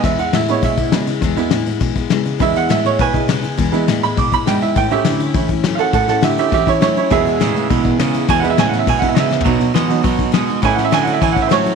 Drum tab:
RD |x--x--x--x--x--x--x--x--|x--x--x--x--x--x--x--x--|x--x--x--x--x--x--x--x--|x--x--x--x--x--x--x--x--|
SD |o--o--o--o--o-----o-----|o--o--o-----o-----o-----|o--o--o--o--o-----o-----|---o--o--o--o-----o-----|
FT |------------------------|------------------------|------------------------|------------------------|
BD |o-----------o--o--------|o-----------o--o--------|o-----------o--o--------|o-----------o--o--------|

RD |x--x--x--x--x--x--x--x--|x--x--x--x--x--x--x--x--|x--x--x--x--x--x--x--x--|x--x--x--x--x--x--x-----|
SD |o-----o-----------o-----|---o--o--o--------o-----|o-----o-----------o-----|o--o--o--o--o-----o--o--|
FT |------------------------|------------------------|------------------------|-----------------------o|
BD |o-----------o--o--------|o-----------o--o--------|o-----------o--o--------|o-----------o--o--------|

RD |x--x--x--x--x--x--x--x--|x--x--x--x--x--x--x--x--|
SD |---o--o-----o-----o-----|o--o--o-----------o-----|
FT |------------------------|------------------------|
BD |o-----------o--o--------|o-----------o--o--------|